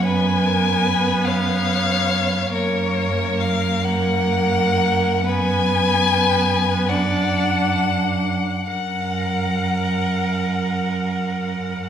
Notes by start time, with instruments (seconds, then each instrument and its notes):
Already playing: cello F#2
0.03 viola B3, violin B4 G#5
0.46 violin A#4
0.86 violin B4
1.25 violin C#5 F5
2.53 cello F#2, viola A#3, violin A#4 C#5
3.41 violin F5
3.85 violin A#4 F#5
5.28 viola B3, violin B4 G#5
6.89 viola D4, violin D5 F#5
8.69 cello F#2, viola A#4, violin F#5